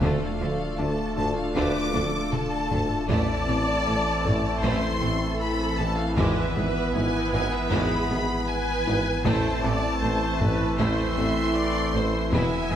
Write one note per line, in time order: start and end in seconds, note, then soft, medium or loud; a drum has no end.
0.00 3.11 D1 medium
0.00 0.17 D2 medium
0.00 0.10 D2 medium
0.00 0.25 D3 loud
0.00 3.06 D3 medium
0.00 0.11 D3 medium
0.00 3.08 A3 medium
0.00 3.09 A3 medium
0.00 0.38 A3 medium
0.00 3.06 D4 medium
0.00 3.10 D4 medium
0.00 3.09 F4 medium
0.00 0.38 F4 medium
0.00 3.06 F4 medium
0.00 0.39 A4 medium
0.00 1.52 C5 medium
0.00 3.10 D5 medium
0.00 0.77 F5 loud
0.00 1.52 E6 medium
0.00 taiko loud
0.40 0.56 D2 medium
0.40 0.49 D2 medium
0.40 0.49 D3 medium
0.40 0.64 F3 medium
0.40 0.48 D4 medium
0.40 0.48 A4 medium
0.40 0.78 A4 medium
0.78 0.94 D2 medium
0.78 0.88 D2 medium
0.78 0.87 D3 medium
0.78 1.02 D4 medium
0.78 0.86 F4 medium
0.78 1.56 A4 medium
0.78 0.86 D5 medium
0.78 1.16 A5 loud
1.17 1.32 D2 medium
1.17 1.26 D2 medium
1.17 1.26 D3 medium
1.17 1.41 D4 medium
1.17 1.26 D4 medium
1.17 1.26 A4 medium
1.17 1.36 A5 loud
1.17 taiko low medium
1.37 1.56 F5 loud
1.55 1.71 D2 loud
1.55 1.64 D2 medium
1.55 1.63 D3 medium
1.55 1.79 D3 loud
1.55 1.92 A3 loud
1.55 1.92 F4 medium
1.55 1.94 B4 medium
1.55 2.33 D6 loud
1.55 taiko medium
1.94 2.02 D2 medium
1.94 2.10 D2 medium
1.94 2.02 D3 medium
1.94 2.18 F3 medium
1.94 2.02 D4 medium
1.94 2.02 A4 medium
1.94 3.10 A4 medium
1.94 taiko high medium
2.33 3.09 A5 loud
2.33 taiko low-mid medium
2.71 2.87 D2 medium
2.71 2.79 D2 medium
2.71 2.79 D3 medium
2.71 2.94 D4 medium
2.71 2.79 D4 medium
2.71 2.79 A4 medium
2.71 taiko low medium
3.08 6.19 A1 loud
3.08 3.18 A1 loud
3.08 3.25 A1 loud
3.08 3.17 A2 loud
3.08 9.08 E3 loud
3.08 9.23 E3 medium
3.08 3.45 A3 loud
3.08 6.13 A3 medium
3.08 3.33 A3 loud
3.08 6.13 C4 medium
3.08 6.18 C4 medium
3.08 9.08 E4 medium
3.08 3.45 E4 medium
3.08 9.24 E4 medium
3.08 4.60 D5 loud
3.08 9.24 E5 medium
3.08 4.61 A5 loud
3.08 taiko loud
3.48 3.56 A1 medium
3.48 3.64 A1 medium
3.48 3.56 A2 medium
3.48 3.71 C4 medium
3.48 3.57 C4 medium
3.48 3.57 A4 medium
3.86 3.95 A1 medium
3.86 4.02 A1 medium
3.86 3.95 A2 medium
3.86 3.94 E4 medium
3.86 4.10 A4 medium
3.86 3.95 C5 medium
4.25 4.33 A1 medium
4.25 4.41 A1 medium
4.25 4.34 A2 medium
4.25 4.34 C4 medium
4.25 4.49 A4 medium
4.25 4.34 A4 medium
4.25 taiko low medium
4.63 4.72 A1 loud
4.63 4.79 A1 loud
4.63 4.71 A2 loud
4.63 4.99 A3 loud
4.63 4.87 A3 loud
4.63 4.99 E4 loud
4.63 5.02 C5 medium
4.63 5.41 C6 loud
4.63 taiko medium
5.02 5.10 A1 medium
5.02 5.18 A1 medium
5.02 5.10 A2 medium
5.02 5.10 C4 medium
5.02 5.26 C4 medium
5.02 5.10 A4 medium
5.02 6.15 A4 loud
5.41 5.79 B5 loud
5.79 5.87 A1 medium
5.79 5.95 A1 medium
5.79 5.87 A2 medium
5.79 5.87 C4 medium
5.79 5.87 A4 medium
5.79 6.03 A4 medium
5.79 5.98 A5 loud
5.99 6.18 F5 loud
6.17 6.25 G#1 loud
6.17 9.27 G#1 loud
6.17 6.33 G#1 loud
6.17 6.26 G#2 loud
6.17 6.41 E3 loud
6.17 6.53 G#3 loud
6.17 9.25 B3 medium
6.17 9.08 B3 loud
6.17 6.53 E4 loud
6.17 6.56 B4 loud
6.17 8.45 D5 medium
6.17 6.95 E5 loud
6.17 8.45 D6 medium
6.17 taiko loud
6.55 6.63 G#1 medium
6.55 6.72 G#1 medium
6.55 6.64 G#2 medium
6.55 6.80 G#3 medium
6.55 6.65 B3 medium
6.55 6.64 G#4 medium
6.55 6.94 B4 loud
6.94 7.02 G#1 medium
6.94 7.10 G#1 medium
6.94 7.03 G#2 medium
6.94 7.03 E4 medium
6.94 7.18 E4 medium
6.94 7.72 B4 loud
6.94 7.03 B4 medium
6.94 7.31 G#5 loud
7.33 7.41 G#1 medium
7.33 7.48 G#1 medium
7.33 7.42 G#2 medium
7.33 7.42 B3 loud
7.33 7.56 E4 medium
7.33 7.41 G#4 medium
7.33 7.52 G#5 loud
7.33 taiko low medium
7.53 7.72 E5 loud
7.71 7.79 G#1 loud
7.71 7.87 G#1 loud
7.71 7.80 G#2 loud
7.71 7.95 E3 loud
7.71 8.07 G#3 loud
7.71 8.07 E4 loud
7.71 8.09 G#4 loud
7.71 8.49 B5 loud
7.71 taiko loud
8.10 8.18 G#1 medium
8.10 8.25 G#1 medium
8.10 8.19 G#2 medium
8.10 8.33 G#3 medium
8.10 8.18 B3 medium
8.10 8.18 G#4 medium
8.10 8.49 G#4 loud
8.48 9.25 B4 loud
8.48 9.25 G#5 loud
8.87 9.02 G#1 medium
8.87 8.95 G#1 medium
8.87 8.95 G#2 medium
8.87 8.95 B3 medium
8.87 9.10 E4 medium
8.87 8.95 G#4 medium
9.24 9.40 A1 loud
9.24 12.34 A1 loud
9.24 9.33 A1 loud
9.24 9.33 A2 loud
9.24 12.76 E3 medium
9.24 12.76 E3 loud
9.24 12.29 A3 loud
9.24 9.49 A3 loud
9.24 9.61 A3 loud
9.24 12.33 C4 medium
9.24 12.29 C4 loud
9.24 12.76 E4 medium
9.24 9.61 E4 loud
9.24 12.76 E4 loud
9.24 9.63 C5 loud
9.24 12.76 E5 medium
9.24 11.52 A5 medium
9.24 10.79 A5 loud
9.24 taiko loud
9.63 9.79 A1 medium
9.63 9.72 A1 medium
9.63 9.72 A2 medium
9.63 9.87 C4 medium
9.63 9.73 C4 medium
9.63 9.72 A4 medium
9.63 10.02 D5 loud
9.63 taiko rim medium
10.02 10.10 A1 medium
10.02 10.18 A1 medium
10.02 10.10 A2 medium
10.02 10.11 E4 medium
10.02 10.25 A4 medium
10.02 10.40 C5 loud
10.02 10.11 C5 medium
10.41 10.49 A1 medium
10.41 10.56 A1 medium
10.41 10.49 A2 medium
10.41 10.49 C4 medium
10.41 10.64 A4 medium
10.41 10.49 A4 medium
10.41 10.79 B4 loud
10.41 taiko low medium
10.79 10.94 A1 loud
10.79 10.87 A1 medium
10.79 10.87 A2 loud
10.79 11.15 A3 loud
10.79 11.03 A3 loud
10.79 11.15 E4 loud
10.79 11.17 C5 loud
10.79 12.33 C6 loud
10.79 taiko loud
11.17 11.33 A1 medium
11.17 11.26 A1 medium
11.17 11.27 A2 medium
11.17 11.26 C4 medium
11.17 11.41 C4 medium
11.17 11.26 A4 medium
11.17 11.56 E5 medium
11.56 11.94 D5 loud
11.94 12.02 A1 medium
11.94 12.10 A1 medium
11.94 12.03 A2 medium
11.94 12.03 C4 medium
11.94 12.18 A4 medium
11.94 12.03 A4 medium
11.94 12.33 C5 medium
12.32 12.40 E1 medium
12.32 12.76 E1 loud
12.32 12.48 E1 loud
12.32 12.41 E2 loud
12.32 12.56 E3 loud
12.32 12.68 G#3 medium
12.32 12.76 B3 medium
12.32 12.69 E4 loud
12.32 12.76 B4 medium
12.32 12.76 E5 loud
12.32 12.76 G#5 loud
12.32 12.76 B5 medium
12.32 taiko loud
12.71 12.76 E1 medium
12.71 12.76 E2 medium
12.71 12.76 G#3 medium
12.71 12.76 B3 medium
12.71 12.76 G#4 medium
12.71 taiko rim soft